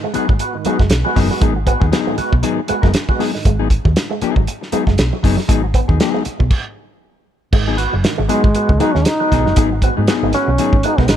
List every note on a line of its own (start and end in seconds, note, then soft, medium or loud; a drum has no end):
0.03 0.12 G#3 medium
0.03 muted clean electric guitar stroke soft
0.14 0.30 F#3 medium
0.14 0.31 G#3 medium
0.14 0.28 B3 medium
0.14 0.28 D#4 medium
0.14 0.28 F#4 medium
0.14 0.27 G#4 medium
0.14 muted fingered electric bass stroke soft
0.14 muted clean electric guitar stroke soft
0.14 closed hi-hat medium
0.29 0.38 G#1 medium
0.29 0.37 F#3 medium
0.29 0.33 B3 soft
0.29 0.33 F#4 soft
0.29 kick medium
0.39 0.57 B3 medium
0.39 0.57 F#4 medium
0.39 muted clean electric guitar stroke soft
0.39 closed hi-hat medium
0.53 0.69 G#2 medium
0.53 0.69 D#3 medium
0.53 muted clean electric guitar stroke soft
0.65 0.81 F#3 medium
0.65 0.76 G#3 medium
0.65 0.82 B3 medium
0.65 0.80 B3 medium
0.65 0.79 D#4 medium
0.65 0.83 F#4 medium
0.65 0.78 G#4 medium
0.65 muted fingered electric bass stroke soft
0.65 closed hi-hat medium
0.79 0.89 F#1 medium
0.79 0.88 G#3 medium
0.79 muted clean electric guitar stroke soft
0.79 kick medium
0.79 snare soft
0.90 1.02 B1 medium
0.90 snare loud
0.90 closed hi-hat medium
1.04 1.14 F#3 medium
1.04 1.19 G#3 medium
1.04 1.19 B3 medium
1.04 1.20 F#4 medium
1.04 muted clean electric guitar stroke soft
1.15 1.28 F#1 medium
1.15 1.33 G#2 medium
1.15 1.33 D#3 medium
1.15 1.32 F#3 medium
1.15 1.31 B3 medium
1.15 1.30 D#4 medium
1.15 1.30 G#4 medium
1.15 muted clean electric guitar stroke soft
1.15 kick medium
1.15 snare soft
1.15 open hi-hat medium
1.31 1.39 F#3 medium
1.31 1.45 G#3 medium
1.31 1.45 B3 medium
1.31 1.45 F#4 medium
1.31 muted clean electric guitar stroke soft
1.31 snare soft
1.40 1.73 G#1 loud
1.40 1.58 G#2 medium
1.40 1.58 D#3 medium
1.40 1.57 F#3 medium
1.40 1.52 G#3 medium
1.40 1.55 B3 medium
1.40 1.54 D#4 medium
1.40 1.54 G#4 medium
1.40 kick loud
1.40 closed hi-hat loud
1.55 muted clean electric guitar stroke soft
1.66 1.84 G#3 medium
1.66 1.77 B3 medium
1.66 1.81 B3 medium
1.66 1.81 F#4 loud
1.66 muted clean electric guitar stroke soft
1.66 kick medium
1.66 closed hi-hat medium
1.80 1.90 D#2 medium
1.80 1.90 F#3 soft
1.80 1.91 B3 soft
1.80 1.86 B3 soft
1.80 1.91 D#4 medium
1.80 1.86 F#4 soft
1.80 1.91 G#4 medium
1.80 kick loud
1.92 2.16 F#3 medium
1.92 2.16 B3 medium
1.92 1.98 B3 soft
1.92 2.16 D#4 loud
1.92 1.98 F#4 soft
1.92 2.16 G#4 loud
1.92 snare loud
1.92 closed hi-hat medium
2.07 2.22 G#2 medium
2.07 2.21 D#3 medium
2.07 2.15 G#3 medium
2.18 2.35 G#3 medium
2.18 2.35 B3 medium
2.18 2.35 F#4 medium
2.18 muted clean electric guitar stroke soft
2.18 muted fingered electric bass stroke medium
2.18 closed hi-hat medium
2.32 2.42 B1 medium
2.32 2.40 F#3 medium
2.32 muted clean electric guitar stroke soft
2.32 kick medium
2.43 2.60 G#2 medium
2.43 2.60 D#3 medium
2.43 2.59 F#3 medium
2.43 2.59 B3 medium
2.43 2.59 D#4 medium
2.43 2.60 G#4 loud
2.43 muted clean electric guitar stroke soft
2.43 closed hi-hat medium
2.68 2.86 G#3 medium
2.68 2.80 G#3 medium
2.68 2.83 B3 medium
2.68 2.82 F#4 medium
2.68 muted clean electric guitar stroke medium
2.68 muted fingered electric bass stroke soft
2.68 closed hi-hat medium
2.82 2.92 F#1 medium
2.82 2.92 F#3 soft
2.82 2.92 G#3 medium
2.82 2.93 B3 soft
2.82 2.88 B3 soft
2.82 2.93 D#4 soft
2.82 2.88 F#4 medium
2.82 2.93 A#4 medium
2.82 kick medium
2.82 snare soft
2.94 muted clean electric guitar stroke soft
2.94 snare loud
2.94 closed hi-hat medium
3.09 3.17 F#3 medium
3.09 3.23 G#3 medium
3.09 3.24 B3 medium
3.09 3.24 F#4 medium
3.09 kick medium
3.19 3.32 F#3 medium
3.19 3.31 G#3 medium
3.19 3.32 B3 medium
3.19 3.33 D#4 medium
3.19 3.32 G#4 medium
3.19 snare soft
3.19 open hi-hat medium
3.34 3.46 G#2 medium
3.34 3.46 D#3 medium
3.34 muted clean electric guitar stroke soft
3.34 snare soft
3.45 3.77 G#1 medium
3.45 3.56 G#3 medium
3.45 muted clean electric guitar stroke soft
3.45 kick loud
3.45 closed hi-hat medium
3.59 3.69 F#3 medium
3.59 3.69 B3 medium
3.59 3.69 D#4 medium
3.59 3.70 G#4 medium
3.70 muted clean electric guitar stroke soft
3.70 kick loud
3.70 closed hi-hat medium
3.85 3.94 D#2 medium
3.85 3.93 F#3 medium
3.85 muted clean electric guitar stroke soft
3.85 kick loud
3.96 muted clean electric guitar stroke soft
3.96 snare loud
3.96 closed hi-hat medium
4.10 4.19 G#3 medium
4.10 muted clean electric guitar stroke medium
4.21 4.42 F#3 medium
4.21 4.37 B3 medium
4.21 4.36 D#4 loud
4.21 4.36 G#4 loud
4.21 muted fingered electric bass stroke soft
4.21 muted clean electric guitar stroke soft
4.21 closed hi-hat medium
4.36 4.45 G#1 medium
4.36 4.45 F#3 medium
4.36 muted clean electric guitar stroke soft
4.36 kick medium
4.47 muted clean electric guitar stroke soft
4.47 closed hi-hat medium
4.61 muted clean electric guitar stroke soft
4.61 snare soft
4.72 4.88 F#3 medium
4.72 4.83 G#3 medium
4.72 4.86 B3 medium
4.72 4.85 D#4 medium
4.72 4.85 G#4 medium
4.72 muted fingered electric bass stroke soft
4.72 closed hi-hat medium
4.86 4.96 F#1 medium
4.86 4.95 G#3 medium
4.86 muted clean electric guitar stroke soft
4.86 kick medium
4.86 snare soft
4.98 5.10 B1 medium
4.98 snare loud
4.98 closed hi-hat medium
5.13 5.21 F#3 medium
5.13 muted clean electric guitar stroke soft
5.23 5.35 F#1 medium
5.23 5.39 F#3 loud
5.23 5.38 B3 medium
5.23 5.38 D#4 loud
5.23 5.37 G#4 medium
5.23 muted clean electric guitar stroke soft
5.23 kick medium
5.23 snare soft
5.23 open hi-hat medium
5.37 5.46 F#3 medium
5.37 muted clean electric guitar stroke soft
5.37 snare soft
5.48 5.81 G#1 loud
5.48 5.65 F#3 medium
5.48 5.59 G#3 medium
5.48 5.64 B3 medium
5.48 5.63 D#4 loud
5.48 5.63 G#4 medium
5.48 kick loud
5.48 closed hi-hat loud
5.64 muted clean electric guitar stroke medium
5.74 5.85 B3 medium
5.74 muted clean electric guitar stroke soft
5.74 kick medium
5.74 closed hi-hat medium
5.88 5.98 D#2 loud
5.88 5.99 F#3 soft
5.88 5.99 B3 soft
5.88 5.99 D#4 medium
5.88 5.99 G#4 medium
5.88 kick medium
6.00 6.24 F#3 loud
6.00 6.24 B3 medium
6.00 6.24 D#4 medium
6.00 6.24 G#4 loud
6.00 snare loud
6.00 closed hi-hat medium
6.14 6.22 G#3 medium
6.25 muted clean electric guitar stroke soft
6.25 muted fingered electric bass stroke soft
6.25 closed hi-hat medium
6.40 6.49 B1 medium
6.40 6.48 F#3 medium
6.40 muted clean electric guitar stroke soft
6.40 kick medium
6.51 kick loud
6.51 crash medium
7.52 7.85 G#1 medium
7.52 7.70 G#2 medium
7.52 7.70 D#3 medium
7.52 7.63 G#3 medium
7.52 muted clean electric guitar stroke soft
7.52 kick loud
7.52 crash loud
7.68 7.77 F#3 medium
7.68 7.78 B3 medium
7.68 7.78 D#4 medium
7.68 7.79 G#4 medium
7.77 7.95 B3 medium
7.77 7.95 F#4 medium
7.77 muted clean electric guitar stroke soft
7.77 closed hi-hat medium
7.93 8.02 F#1 medium
7.93 8.01 F#3 medium
7.93 muted clean electric guitar stroke soft
8.03 8.21 G#2 medium
8.03 8.21 D#3 medium
8.03 muted clean electric guitar stroke soft
8.03 snare loud
8.03 closed hi-hat medium
8.18 8.28 G#1 loud
8.18 8.26 G#3 medium
8.18 muted clean electric guitar stroke medium
8.29 8.45 F#3 medium
8.29 8.81 G#3 loud
8.29 8.46 G#3 medium
8.29 8.44 B3 medium
8.29 8.43 B3 medium
8.29 8.43 D#4 medium
8.29 8.43 F#4 medium
8.29 8.43 G#4 medium
8.29 muted clean electric guitar stroke soft
8.29 closed hi-hat medium
8.44 8.53 G#1 medium
8.44 8.52 F#3 medium
8.44 8.49 B3 soft
8.44 8.49 F#4 soft
8.44 kick loud
8.55 8.72 B3 medium
8.55 8.72 F#4 medium
8.55 muted clean electric guitar stroke soft
8.55 closed hi-hat medium
8.69 8.78 C#2 medium
8.69 8.84 G#2 medium
8.69 8.84 D#3 medium
8.69 muted clean electric guitar stroke soft
8.69 kick medium
8.80 8.96 F#3 medium
8.80 8.91 G#3 medium
8.80 8.94 B3 medium
8.80 8.97 B3 medium
8.80 8.96 D#4 loud
8.80 8.93 D#4 medium
8.80 8.98 F#4 medium
8.80 8.93 G#4 loud
8.80 closed hi-hat medium
8.94 9.04 D#2 medium
8.94 9.03 G#3 medium
8.94 9.07 C#4 loud
8.94 muted clean electric guitar stroke soft
8.94 snare soft
9.05 9.82 D#4 loud
9.05 snare loud
9.05 closed hi-hat loud
9.20 9.29 F#3 medium
9.20 9.35 G#3 medium
9.20 9.35 B3 medium
9.20 9.35 F#4 medium
9.20 muted clean electric guitar stroke soft
9.31 9.43 B1 loud
9.31 9.48 G#2 medium
9.31 9.48 D#3 medium
9.31 9.48 F#3 medium
9.31 9.47 B3 loud
9.31 9.47 D#4 loud
9.31 9.46 G#4 loud
9.31 muted clean electric guitar stroke soft
9.31 kick medium
9.31 snare soft
9.31 closed hi-hat medium
9.45 9.55 F#1 medium
9.45 9.55 F#3 medium
9.45 9.60 G#3 medium
9.45 9.60 B3 medium
9.45 9.60 F#4 medium
9.45 muted clean electric guitar stroke medium
9.45 snare soft
9.56 9.89 G#1 loud
9.56 9.74 G#2 medium
9.56 9.74 D#3 medium
9.56 9.73 F#3 loud
9.56 9.68 G#3 medium
9.56 9.71 B3 loud
9.56 9.71 D#4 medium
9.56 9.70 G#4 loud
9.56 kick loud
9.56 closed hi-hat loud
9.72 muted clean electric guitar stroke medium
9.82 9.99 G#3 medium
9.82 9.96 B3 medium
9.82 9.94 B3 medium
9.82 9.96 F#4 medium
9.82 muted clean electric guitar stroke soft
9.82 kick loud
9.82 closed hi-hat medium
9.97 10.06 G#2 medium
9.97 10.07 F#3 soft
9.97 10.01 B3 soft
9.97 10.07 B3 medium
9.97 10.07 D#4 medium
9.97 10.01 F#4 soft
9.97 10.07 G#4 medium
10.07 10.32 F#3 medium
10.07 10.14 B3 soft
10.07 10.32 B3 medium
10.07 10.32 D#4 medium
10.07 10.14 F#4 soft
10.07 10.32 G#4 medium
10.07 snare loud
10.07 closed hi-hat medium
10.23 10.31 G#1 medium
10.23 10.37 G#2 medium
10.23 10.37 D#3 medium
10.23 10.31 G#3 medium
10.33 10.51 G#3 medium
10.33 10.51 B3 medium
10.33 10.86 C#4 loud
10.33 10.51 F#4 medium
10.33 muted clean electric guitar stroke soft
10.33 closed hi-hat medium
10.48 10.57 B1 medium
10.48 10.56 F#3 medium
10.48 muted clean electric guitar stroke soft
10.58 10.76 G#2 medium
10.58 10.76 D#3 medium
10.58 10.75 F#3 medium
10.58 10.75 B3 medium
10.58 10.75 D#4 medium
10.58 10.75 G#4 medium
10.58 muted clean electric guitar stroke soft
10.58 closed hi-hat medium
10.73 10.82 G#1 medium
10.73 kick medium
10.83 11.01 G#3 medium
10.83 10.95 G#3 medium
10.83 10.97 B3 medium
10.83 11.00 D#4 loud
10.83 10.97 F#4 medium
10.83 muted clean electric guitar stroke soft
10.83 closed hi-hat medium
10.98 11.07 B1 medium
10.98 11.09 F#3 soft
10.98 11.07 G#3 medium
10.98 11.03 B3 soft
10.98 11.11 B3 medium
10.98 11.09 B3 soft
10.98 11.09 D#4 soft
10.98 11.08 A#4 soft
10.98 kick medium
10.98 snare soft
11.08 11.17 G#1 medium
11.08 11.15 B3 soft
11.08 11.17 D#4 loud
11.08 11.15 F#4 soft
11.08 muted clean electric guitar stroke soft
11.08 snare loud
11.08 closed hi-hat medium